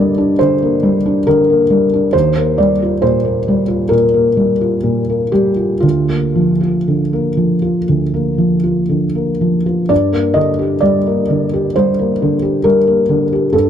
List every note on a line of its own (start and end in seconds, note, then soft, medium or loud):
0.00 0.35 G2 soft
0.00 0.41 D3 soft
0.00 0.83 G3 soft
0.00 0.62 A#3 soft
0.00 0.18 D4 soft
0.00 2.15 D5 medium
0.00 2.16 D#5 medium
0.18 0.52 D4 soft
0.39 0.75 D3 soft
0.39 1.26 C5 medium
0.62 0.97 A#3 soft
0.83 1.18 G3 soft
1.06 1.40 D4 soft
1.27 1.62 D3 soft
1.27 2.14 A#4 medium
1.50 1.84 A#3 soft
1.70 2.05 G3 soft
1.93 2.14 D4 soft
2.13 3.88 D#2 soft
2.13 2.57 C5 medium
2.38 2.72 A#3 soft
2.58 2.94 G3 soft
2.58 3.02 D5 medium
2.82 3.16 F4 soft
3.02 3.38 A#2 soft
3.02 3.92 C5 medium
3.25 3.60 A#3 soft
3.48 3.83 G3 soft
3.68 4.05 F4 soft
3.89 4.28 A#2 soft
3.89 5.32 A#4 medium
4.14 4.52 A#3 soft
4.37 4.75 G3 soft
4.61 4.99 F4 soft
4.83 5.23 A#2 soft
5.10 5.48 A#3 soft
5.32 5.73 G3 soft
5.32 5.83 G4 medium
5.56 5.79 F4 soft
5.80 7.84 D2 soft
5.80 6.59 F4 soft
6.09 6.50 A#3 soft
6.36 6.76 F3 soft
6.61 7.01 F4 soft
6.88 7.28 D3 soft
7.13 7.53 A#3 soft
7.37 7.78 F3 soft
7.62 8.03 F4 soft
7.89 9.87 D2 soft
8.14 8.55 A#3 soft
8.38 8.80 F3 soft
8.64 9.05 F4 soft
8.89 9.31 D3 soft
9.15 9.56 A#3 soft
9.41 9.81 F3 soft
9.66 9.90 F4 soft
9.89 11.71 G2 soft
9.89 10.36 D5 medium
10.12 10.50 A#3 soft
10.34 10.74 D3 soft
10.34 10.82 D#5 medium
10.59 10.97 G4 soft
10.81 11.20 G3 soft
10.81 11.74 D5 medium
11.06 11.44 A#3 soft
11.30 11.66 D3 soft
11.53 11.89 G4 soft
11.76 12.12 G3 soft
11.76 12.65 C5 medium
11.99 12.34 A#3 soft
12.22 12.57 D3 soft
12.42 12.78 G4 soft
12.64 13.00 G3 soft
12.64 13.53 A#4 medium
12.87 13.23 A#3 soft
13.09 13.44 D3 soft
13.33 13.67 G4 soft
13.53 13.70 G2 soft
13.53 13.70 A4 medium